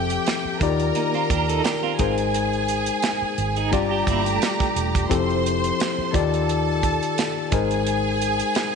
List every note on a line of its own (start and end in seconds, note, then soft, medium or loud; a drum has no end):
0.00 0.16 F1 medium
0.00 0.50 F3 medium
0.00 0.50 C4 medium
0.00 0.50 G4 medium
0.00 0.58 G4 medium
0.00 0.50 A4 medium
0.00 0.51 E5 medium
0.00 0.58 G5 medium
0.10 closed hi-hat medium
0.26 snare medium
0.26 closed hi-hat medium
0.45 muted fingered electric bass stroke soft
0.60 0.90 D#2 medium
0.60 1.72 D#3 medium
0.60 1.72 D#4 medium
0.60 1.73 F4 medium
0.60 1.73 G4 medium
0.60 1.96 A#4 medium
0.60 1.73 D5 medium
0.60 1.96 A#5 medium
0.60 kick medium
0.60 closed hi-hat medium
0.80 closed hi-hat soft
0.95 1.14 A#3 soft
0.95 1.13 D#4 medium
0.95 closed hi-hat medium
1.14 1.30 C4 medium
1.14 1.29 F4 medium
1.14 closed hi-hat soft
1.30 1.60 D#2 medium
1.30 1.48 D4 medium
1.30 1.48 G4 medium
1.30 kick medium
1.30 closed hi-hat medium
1.49 1.64 D#4 medium
1.49 1.64 A4 medium
1.49 closed hi-hat medium
1.64 1.82 D4 soft
1.64 1.82 G4 medium
1.64 snare medium
1.64 closed hi-hat medium
1.83 2.16 C4 soft
1.83 2.16 F4 medium
1.99 2.88 G#1 medium
1.99 3.10 G#3 medium
1.99 3.10 D#4 medium
1.99 3.10 G#4 medium
1.99 3.69 G#4 medium
1.99 3.11 A#4 medium
1.99 3.11 C5 medium
1.99 3.69 G#5 medium
1.99 kick medium
1.99 closed hi-hat medium
2.18 closed hi-hat soft
2.34 closed hi-hat medium
2.53 closed hi-hat soft
2.68 closed hi-hat medium
2.86 closed hi-hat medium
3.02 snare medium
3.02 closed hi-hat medium
3.22 muted fingered electric bass stroke soft
3.38 3.73 G#1 medium
3.38 closed hi-hat medium
3.56 3.72 D#4 soft
3.56 3.72 G#4 medium
3.56 closed hi-hat soft
3.71 4.02 G1 medium
3.71 4.64 G3 medium
3.71 3.90 C4 medium
3.71 4.64 D4 medium
3.71 4.65 F4 medium
3.71 3.90 F4 medium
3.71 5.07 G4 medium
3.71 4.65 G4 medium
3.71 4.65 D5 medium
3.71 5.07 A#5 medium
3.71 kick medium
3.71 closed hi-hat medium
3.91 4.06 D4 medium
3.91 4.06 G4 medium
4.07 4.37 G1 medium
4.07 4.25 A#3 medium
4.07 4.25 E4 medium
4.07 kick medium
4.07 closed hi-hat medium
4.26 5.07 A3 medium
4.26 5.07 D4 medium
4.26 closed hi-hat medium
4.42 snare medium
4.42 closed hi-hat medium
4.60 kick medium
4.60 closed hi-hat soft
4.76 5.06 E1 medium
4.76 closed hi-hat medium
4.95 kick medium
4.95 closed hi-hat medium
5.10 5.70 F1 medium
5.10 6.02 F3 medium
5.10 6.02 C4 medium
5.10 6.03 E4 medium
5.10 6.03 G4 medium
5.10 6.03 A4 medium
5.10 6.12 C5 medium
5.10 6.12 C6 medium
5.10 kick medium
5.10 closed hi-hat medium
5.30 closed hi-hat soft
5.46 closed hi-hat medium
5.64 closed hi-hat medium
5.80 snare loud
5.80 closed hi-hat medium
5.98 muted fingered electric bass stroke soft
6.13 6.98 D#2 medium
6.13 7.24 D#3 medium
6.13 7.25 D#4 medium
6.13 7.25 F4 medium
6.13 7.25 G4 medium
6.13 7.49 A4 medium
6.13 7.26 D5 medium
6.13 7.49 A5 medium
6.13 kick medium
6.13 closed hi-hat medium
6.34 closed hi-hat soft
6.49 closed hi-hat medium
6.83 kick medium
6.83 closed hi-hat medium
7.03 closed hi-hat soft
7.18 snare medium
7.18 closed hi-hat medium
7.51 8.41 G#1 medium
7.51 8.63 G#3 medium
7.51 8.63 D#4 medium
7.51 8.75 G#4 medium
7.51 8.63 G#4 medium
7.51 8.64 A#4 medium
7.51 8.64 C5 medium
7.51 8.75 G#5 medium
7.51 kick medium
7.51 closed hi-hat medium
7.71 closed hi-hat medium
7.87 closed hi-hat medium
8.21 closed hi-hat medium
8.40 closed hi-hat medium
8.55 snare medium
8.55 closed hi-hat medium